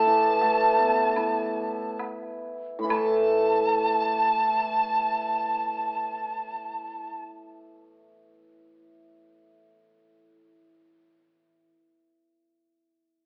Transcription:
0, 0, Header, 1, 5, 480
1, 0, Start_track
1, 0, Tempo, 733496
1, 762, Tempo, 824176
1, 1242, Tempo, 894188
1, 1725, Time_signature, 4, 2, 24, 8
1, 7291, End_track
2, 0, Start_track
2, 0, Title_t, "Dizi"
2, 0, Program_c, 0, 73
2, 0, Note_on_c, 0, 81, 94
2, 1217, Note_off_c, 0, 81, 0
2, 1683, Note_on_c, 0, 83, 78
2, 1738, Note_on_c, 0, 81, 93
2, 1746, Note_off_c, 0, 83, 0
2, 4071, Note_off_c, 0, 81, 0
2, 7291, End_track
3, 0, Start_track
3, 0, Title_t, "Erhu"
3, 0, Program_c, 1, 110
3, 0, Note_on_c, 1, 81, 106
3, 1235, Note_off_c, 1, 81, 0
3, 1718, Note_on_c, 1, 81, 88
3, 4040, Note_off_c, 1, 81, 0
3, 7291, End_track
4, 0, Start_track
4, 0, Title_t, "Hammered dulcimer"
4, 0, Program_c, 2, 15
4, 0, Note_on_c, 2, 45, 72
4, 44, Note_on_c, 2, 52, 54
4, 277, Note_on_c, 2, 57, 54
4, 514, Note_on_c, 2, 59, 57
4, 767, Note_on_c, 2, 64, 53
4, 996, Note_off_c, 2, 52, 0
4, 1235, Note_off_c, 2, 45, 0
4, 1244, Note_off_c, 2, 57, 0
4, 1481, Note_off_c, 2, 59, 0
4, 1671, Note_on_c, 2, 45, 56
4, 1699, Note_on_c, 2, 52, 53
4, 1727, Note_on_c, 2, 57, 56
4, 1728, Note_off_c, 2, 64, 0
4, 5777, Note_off_c, 2, 57, 0
4, 6416, Note_off_c, 2, 45, 0
4, 6444, Note_off_c, 2, 52, 0
4, 7291, End_track
5, 0, Start_track
5, 0, Title_t, "Drums"
5, 270, Note_on_c, 9, 77, 45
5, 335, Note_off_c, 9, 77, 0
5, 761, Note_on_c, 9, 76, 52
5, 819, Note_off_c, 9, 76, 0
5, 1245, Note_on_c, 9, 76, 46
5, 1245, Note_on_c, 9, 77, 49
5, 1298, Note_off_c, 9, 76, 0
5, 1298, Note_off_c, 9, 77, 0
5, 1733, Note_on_c, 9, 76, 85
5, 1787, Note_off_c, 9, 76, 0
5, 7291, End_track
0, 0, End_of_file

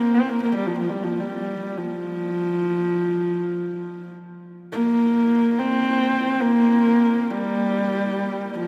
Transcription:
0, 0, Header, 1, 2, 480
1, 0, Start_track
1, 0, Tempo, 500000
1, 8328, End_track
2, 0, Start_track
2, 0, Title_t, "Horsehead fiddle"
2, 0, Program_c, 0, 110
2, 0, Note_on_c, 0, 58, 74
2, 140, Note_on_c, 0, 60, 73
2, 155, Note_off_c, 0, 58, 0
2, 284, Note_on_c, 0, 58, 76
2, 299, Note_off_c, 0, 60, 0
2, 403, Note_off_c, 0, 58, 0
2, 409, Note_on_c, 0, 58, 70
2, 520, Note_off_c, 0, 58, 0
2, 530, Note_on_c, 0, 55, 66
2, 637, Note_on_c, 0, 53, 66
2, 651, Note_off_c, 0, 55, 0
2, 745, Note_off_c, 0, 53, 0
2, 751, Note_on_c, 0, 53, 64
2, 861, Note_on_c, 0, 55, 59
2, 876, Note_off_c, 0, 53, 0
2, 996, Note_on_c, 0, 53, 62
2, 1010, Note_off_c, 0, 55, 0
2, 1150, Note_on_c, 0, 55, 67
2, 1165, Note_off_c, 0, 53, 0
2, 1706, Note_on_c, 0, 53, 65
2, 1720, Note_off_c, 0, 55, 0
2, 3949, Note_off_c, 0, 53, 0
2, 4539, Note_on_c, 0, 58, 82
2, 5363, Note_on_c, 0, 60, 82
2, 5378, Note_off_c, 0, 58, 0
2, 6156, Note_on_c, 0, 58, 87
2, 6171, Note_off_c, 0, 60, 0
2, 7015, Note_on_c, 0, 55, 82
2, 7030, Note_off_c, 0, 58, 0
2, 8247, Note_off_c, 0, 55, 0
2, 8253, Note_on_c, 0, 53, 74
2, 8328, Note_off_c, 0, 53, 0
2, 8328, End_track
0, 0, End_of_file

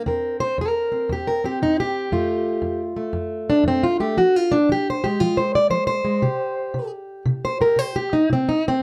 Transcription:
0, 0, Header, 1, 2, 480
1, 0, Start_track
1, 0, Tempo, 515464
1, 44, Time_signature, 4, 2, 24, 8
1, 8217, End_track
2, 0, Start_track
2, 0, Title_t, "Steel-string acoustic guitar"
2, 0, Program_c, 0, 25
2, 58, Note_on_c, 0, 40, 75
2, 58, Note_on_c, 0, 60, 52
2, 71, Note_on_c, 0, 70, 52
2, 371, Note_off_c, 0, 70, 0
2, 375, Note_on_c, 0, 72, 110
2, 498, Note_off_c, 0, 40, 0
2, 530, Note_off_c, 0, 72, 0
2, 540, Note_on_c, 0, 40, 75
2, 571, Note_on_c, 0, 70, 90
2, 851, Note_off_c, 0, 60, 0
2, 854, Note_on_c, 0, 60, 47
2, 979, Note_off_c, 0, 40, 0
2, 1019, Note_on_c, 0, 40, 76
2, 1028, Note_off_c, 0, 70, 0
2, 1047, Note_on_c, 0, 67, 80
2, 1187, Note_off_c, 0, 67, 0
2, 1187, Note_on_c, 0, 70, 86
2, 1336, Note_off_c, 0, 70, 0
2, 1340, Note_off_c, 0, 60, 0
2, 1344, Note_on_c, 0, 60, 43
2, 1355, Note_on_c, 0, 67, 87
2, 1458, Note_off_c, 0, 40, 0
2, 1500, Note_off_c, 0, 67, 0
2, 1509, Note_on_c, 0, 40, 70
2, 1516, Note_on_c, 0, 63, 89
2, 1660, Note_off_c, 0, 63, 0
2, 1676, Note_on_c, 0, 67, 96
2, 1944, Note_off_c, 0, 40, 0
2, 1975, Note_on_c, 0, 41, 69
2, 1976, Note_off_c, 0, 60, 0
2, 1980, Note_on_c, 0, 57, 50
2, 1980, Note_on_c, 0, 65, 48
2, 2417, Note_off_c, 0, 41, 0
2, 2437, Note_on_c, 0, 41, 77
2, 2621, Note_off_c, 0, 67, 0
2, 2749, Note_off_c, 0, 57, 0
2, 2761, Note_on_c, 0, 57, 47
2, 2887, Note_off_c, 0, 41, 0
2, 2914, Note_on_c, 0, 41, 76
2, 3256, Note_on_c, 0, 62, 98
2, 3366, Note_off_c, 0, 41, 0
2, 3386, Note_on_c, 0, 41, 77
2, 3411, Note_off_c, 0, 62, 0
2, 3425, Note_on_c, 0, 60, 99
2, 3559, Note_off_c, 0, 65, 0
2, 3570, Note_on_c, 0, 65, 87
2, 3575, Note_off_c, 0, 60, 0
2, 3714, Note_off_c, 0, 57, 0
2, 3725, Note_off_c, 0, 65, 0
2, 3725, Note_on_c, 0, 57, 49
2, 3729, Note_on_c, 0, 67, 92
2, 3841, Note_off_c, 0, 41, 0
2, 3871, Note_off_c, 0, 57, 0
2, 3886, Note_on_c, 0, 53, 81
2, 3887, Note_off_c, 0, 67, 0
2, 3891, Note_on_c, 0, 66, 85
2, 4062, Note_off_c, 0, 66, 0
2, 4062, Note_on_c, 0, 65, 103
2, 4205, Note_on_c, 0, 62, 113
2, 4214, Note_off_c, 0, 65, 0
2, 4331, Note_off_c, 0, 53, 0
2, 4365, Note_off_c, 0, 62, 0
2, 4370, Note_on_c, 0, 53, 81
2, 4395, Note_on_c, 0, 67, 91
2, 4540, Note_off_c, 0, 67, 0
2, 4562, Note_on_c, 0, 72, 93
2, 4691, Note_on_c, 0, 67, 86
2, 4704, Note_off_c, 0, 72, 0
2, 4707, Note_on_c, 0, 56, 45
2, 4813, Note_off_c, 0, 53, 0
2, 4843, Note_off_c, 0, 67, 0
2, 4843, Note_on_c, 0, 65, 92
2, 4852, Note_on_c, 0, 53, 81
2, 5004, Note_off_c, 0, 65, 0
2, 5004, Note_on_c, 0, 72, 94
2, 5164, Note_off_c, 0, 72, 0
2, 5171, Note_on_c, 0, 74, 90
2, 5294, Note_off_c, 0, 53, 0
2, 5309, Note_off_c, 0, 74, 0
2, 5309, Note_on_c, 0, 53, 74
2, 5313, Note_on_c, 0, 72, 113
2, 5455, Note_off_c, 0, 72, 0
2, 5466, Note_on_c, 0, 72, 108
2, 5618, Note_off_c, 0, 56, 0
2, 5629, Note_on_c, 0, 56, 51
2, 5762, Note_off_c, 0, 53, 0
2, 5782, Note_off_c, 0, 56, 0
2, 5793, Note_on_c, 0, 48, 79
2, 5797, Note_on_c, 0, 67, 49
2, 6244, Note_off_c, 0, 48, 0
2, 6276, Note_on_c, 0, 48, 75
2, 6435, Note_off_c, 0, 72, 0
2, 6725, Note_off_c, 0, 48, 0
2, 6756, Note_on_c, 0, 48, 81
2, 6934, Note_on_c, 0, 72, 106
2, 7079, Note_off_c, 0, 67, 0
2, 7082, Note_on_c, 0, 67, 51
2, 7087, Note_off_c, 0, 72, 0
2, 7091, Note_on_c, 0, 70, 97
2, 7205, Note_off_c, 0, 48, 0
2, 7227, Note_on_c, 0, 48, 77
2, 7252, Note_off_c, 0, 70, 0
2, 7252, Note_on_c, 0, 72, 97
2, 7407, Note_off_c, 0, 67, 0
2, 7407, Note_off_c, 0, 72, 0
2, 7411, Note_on_c, 0, 67, 98
2, 7567, Note_off_c, 0, 67, 0
2, 7571, Note_on_c, 0, 63, 95
2, 7680, Note_off_c, 0, 48, 0
2, 7725, Note_on_c, 0, 48, 75
2, 7727, Note_off_c, 0, 63, 0
2, 7755, Note_on_c, 0, 60, 84
2, 7899, Note_off_c, 0, 60, 0
2, 7903, Note_on_c, 0, 63, 101
2, 8052, Note_off_c, 0, 63, 0
2, 8084, Note_on_c, 0, 60, 111
2, 8169, Note_off_c, 0, 48, 0
2, 8217, Note_off_c, 0, 60, 0
2, 8217, End_track
0, 0, End_of_file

